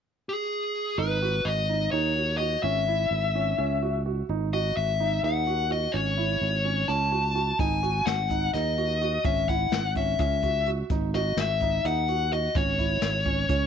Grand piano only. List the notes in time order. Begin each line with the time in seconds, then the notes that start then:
0.98 D#4
1.22 F#4
1.69 D#4
1.93 D#4
2.16 F#4
2.40 F#4
2.64 C#4
2.88 E4
3.35 C#4
3.58 C#4
3.82 F#4
4.06 F#4
4.30 D#4
4.53 F#4
5.00 D#4
5.24 D#4
5.47 F#4
5.70 F#4
5.94 C#4
6.18 E4
6.65 C#4
6.88 C#4
7.12 F#4
7.35 F#4
7.60 D#4
7.83 F#4
8.31 D#4
8.55 D#4
8.78 F#4
9.02 F#4
9.25 C#4
9.49 E4
9.96 C#4
10.19 C#4
10.43 F#4
10.67 F#4
10.91 D#4
11.15 F#4
11.62 D#4
11.85 D#4
12.09 F#4
12.32 F#4
12.56 C#4
12.79 E4
13.26 C#4
13.49 C#4